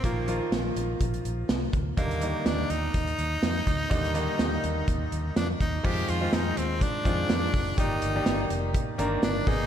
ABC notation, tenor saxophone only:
X:1
M:4/4
L:1/8
Q:"Swing 16ths" 1/4=124
K:Eb
V:1 name="Tenor saxophone"
B,2 z6 | B,2 D E4- E- | E6 D E | G F E C D4 |
E3 z3 D E |]